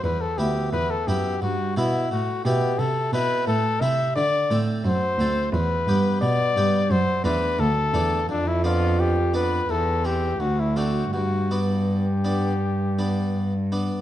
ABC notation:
X:1
M:4/4
L:1/16
Q:1/4=86
K:Em
V:1 name="Trumpet"
B A G2 B A G2 F2 E2 F2 G2 | [K:G] A2 B2 A2 e2 d3 z c4 | B4 d4 c2 B2 A4 | D E =F2 G2 B2 A2 G2 ^F E F2 |
F3 z G8- G2 z2 |]
V:2 name="Harpsichord"
z2 [B,E]4 [B,E]2 z2 [B,E]4 [B,E]2 | [K:G] z2 [CE]4 [CE]2 z2 [CA]4 [CA]2 | z2 [B,G]4 [B,G]2 z2 [A,D]4 [A,D]2 | z2 [B,D]4 [B,D]2 z2 C2 z2 [A,CD]2 |
z2 [B,D]4 [B,D]2 z2 [B,D]4 [B,D]2 |]
V:3 name="Harpsichord" clef=bass
E,,2 D,,2 E,,2 F,,2 G,,2 B,,2 A,,2 B,,2 | [K:G] C,2 B,,2 A,,2 C,2 D,2 A,,2 F,,2 D,,2 | E,,2 G,,2 B,,2 G,,2 F,,2 E,,2 D,,2 E,,2 | =F,,8 E,,4 D,,4 |
G,,12- G,,2 z2 |]
V:4 name="Cello" clef=bass
E,,2 D,,2 E,,2 F,,2 G,,2 B,,2 A,,2 B,,2 | [K:G] C,2 B,,2 A,,2 C,2 D,2 A,,2 F,,2 D,,2 | E,,2 G,,2 B,,2 G,,2 F,,2 E,,2 D,,2 E,,2 | =F,,8 E,,4 D,,4 |
G,,12- G,,2 z2 |]